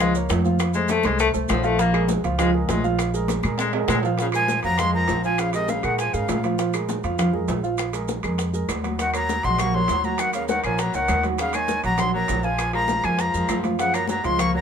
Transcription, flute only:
4.20 4.26 F5 medium
4.35 4.62 G#5 loud
4.64 4.81 A#5 loud
4.79 4.94 C6 loud
4.94 5.22 A#5 loud
5.25 5.41 G#5 medium
5.40 5.53 F5 medium
5.54 5.71 D#5 medium
5.70 5.85 F5 medium
5.84 5.99 F#5 medium
5.99 6.15 G#5 medium
6.14 6.44 F5 medium
8.99 9.13 F#5 medium
9.14 9.46 A#5 medium
9.45 9.61 C6 medium
9.60 9.76 C#6 medium
9.74 10.06 C6 loud
10.05 10.21 A#5 medium
10.20 10.33 F#5 loud
10.34 10.48 F5 medium
10.49 10.63 F#5 medium
10.64 10.81 G#5 medium
10.80 10.96 A#5 medium
10.95 11.24 F#5 medium
11.40 11.56 F5 medium
11.54 11.84 G#5 loud
11.85 12.02 A#5 loud
12.00 12.14 C6 medium
12.15 12.46 A#5 medium
12.44 12.74 G#5 medium
12.74 13.06 A#5 loud
13.05 13.22 G#5 loud
13.20 13.57 A#5 medium
13.79 13.96 F#5 medium
13.94 14.09 A#5 medium
14.10 14.27 A#5 medium
14.25 14.41 C6 loud
14.40 14.54 C#6 medium
14.55 14.61 A#5 loud

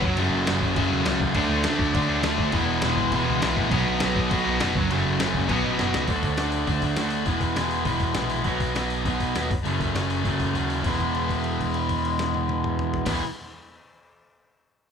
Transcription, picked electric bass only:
0.03 0.15 F#1 medium
0.16 0.29 F#1 loud
0.31 0.44 F#1 medium
0.47 0.59 F#1 loud
0.62 0.74 F#1 medium
0.76 0.88 F#1 medium
0.91 1.03 E1 loud
1.07 1.18 C#2 medium
1.20 1.33 C#2 medium
1.35 1.47 D2 loud
1.50 1.62 D2 medium
1.65 1.77 D2 loud
1.80 1.92 D2 medium
1.94 2.07 D3 medium
2.09 2.21 D2 loud
2.23 2.36 D2 medium
2.39 2.51 D2 medium
2.53 2.65 E1 loud
2.68 2.81 E1 loud
2.83 2.95 E1 loud
2.97 3.10 E1 medium
3.12 3.24 E1 loud
3.29 3.41 C#2 loud
3.43 3.55 B1 medium
3.57 3.69 A#1 medium
3.71 3.84 B1 loud
3.87 3.99 B1 loud
4.03 4.14 B1 loud
4.15 4.28 B1 medium
4.31 4.43 B2 medium
4.46 4.58 B1 loud
4.62 4.74 F1 loud
4.76 4.88 F#1 medium
4.91 5.03 F#1 loud
5.05 5.17 F#1 loud
5.20 5.32 F#1 loud
5.35 5.47 F#1 medium
5.50 5.62 B1 loud
5.66 5.77 A1 loud
5.81 5.92 F#1 medium
5.95 6.07 C#2 medium
6.08 6.21 D2 loud
6.23 6.36 D2 medium
6.39 6.65 D2 medium
6.68 6.81 D2 medium
6.82 6.96 D2 medium
6.98 7.24 D2 medium
7.26 7.39 E1 medium
7.41 7.54 E1 medium
7.56 7.83 E1 medium
7.86 7.99 E1 medium
8.00 8.14 E1 medium
8.15 8.42 A#1 medium
8.45 8.59 B1 medium
8.60 8.73 B1 medium
8.76 9.02 B1 medium
9.05 9.19 B1 medium
9.20 9.34 B1 medium
9.37 9.49 D#2 medium
9.50 9.64 F#1 medium
9.65 9.78 F#1 medium
9.80 9.94 F#1 medium
9.94 10.21 F#1 medium
10.25 10.38 F#1 medium
10.40 10.53 F#1 medium
10.54 10.81 D#2 medium
10.85 12.99 E1 medium
13.07 13.19 E1 medium

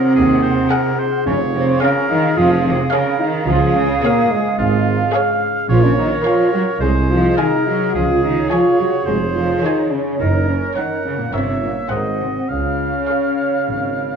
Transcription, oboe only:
0.00 0.14 A#4 medium
0.15 0.42 G#4 medium
0.43 0.70 C5 medium
0.70 1.01 A#4 medium
0.99 1.26 C5 medium
1.27 1.81 C#5 medium
1.82 2.39 A#4 medium
2.38 2.91 G#4 medium
2.92 3.27 A#4 medium
3.48 4.54 G#4 medium
4.59 5.13 F4 medium
5.14 5.68 F5 medium
5.69 6.24 C#5 medium
6.25 6.80 C#5 medium
6.80 7.36 C5 medium
7.37 7.93 A#4 medium
7.95 8.49 G#4 medium
8.50 9.08 C#5 medium
9.06 9.91 C5 medium
10.19 10.72 A#4 medium
10.77 11.32 F#5 medium
11.34 11.90 E5 medium
11.91 12.51 D#5 soft
12.49 14.16 F5 medium

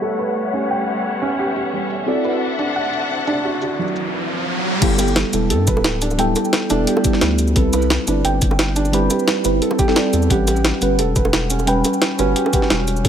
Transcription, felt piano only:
0.00 1.73 G3 medium
0.00 1.39 G4 medium
0.00 0.18 A4 medium
0.19 0.35 B4 medium
0.53 0.70 C#4 medium
0.71 0.80 G5 medium
1.22 1.32 C#4 medium
1.39 1.54 G4 medium
1.56 1.72 G4 medium
1.73 1.90 G3 medium
2.07 2.24 A4 medium
2.25 2.41 B4 medium
2.59 2.75 D4 medium
2.76 2.86 F#5 medium
3.27 3.37 D4 loud
3.45 3.60 F#4 medium
3.62 3.77 F#4 medium
3.79 3.95 F#3 medium
4.82 4.97 G4 medium
4.99 5.14 G4 medium
5.16 5.32 G3 medium
5.50 5.67 A4 medium
5.68 5.84 B4 medium
6.02 6.18 D4 medium
6.19 6.29 G5 medium
6.70 6.80 D4 loud
6.88 7.03 G4 medium
7.05 7.20 G4 medium
7.22 7.38 G3 medium
7.56 7.73 A4 medium
7.73 7.90 B4 medium
8.08 8.24 D4 medium
8.25 8.34 G5 medium
8.76 8.86 D4 loud
8.93 9.09 G4 medium
9.11 9.26 G4 medium
9.28 9.44 G3 medium
9.62 9.78 A4 medium
9.79 9.95 G4 loud
9.96 10.12 D5 medium
10.13 10.29 A4 medium
10.30 10.46 G4 medium
10.47 10.63 G4 medium
10.64 10.81 G3 medium
10.99 11.15 A4 medium
11.16 11.32 B4 medium
11.50 11.67 C#4 medium
11.67 11.77 G5 medium
12.19 12.29 C#4 loud
12.36 12.52 G4 medium
12.53 12.69 G4 medium
12.70 12.87 G3 medium
13.05 13.09 A4 medium

